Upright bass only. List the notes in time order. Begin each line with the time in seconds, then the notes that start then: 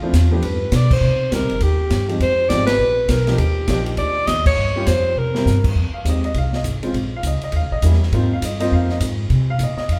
0.01 muted upright bass stroke
0.13 E2
0.42 G2
0.72 B2
1.01 C3
1.31 C2
1.41 A#1
1.52 G1
1.60 D#2
1.90 G2
2.20 F2
2.50 G#1
2.78 A#1
3.08 B1
3.38 D#2
3.68 A#1
3.97 D2
4.27 D#2
4.57 G2
4.87 F2
5.16 C3
5.46 G2
5.75 F2
5.92 muted upright bass stroke
6.05 D#2
6.34 C2
6.64 G1
6.93 A#1
7.23 C#2
7.42 muted upright bass stroke
7.53 D#2
7.61 C#2
7.71 A#1
7.82 E2
8.12 G#2
8.42 G2
8.72 F2
9.00 G#2
9.30 C3
9.59 A#2
9.76 muted upright bass stroke
9.89 F2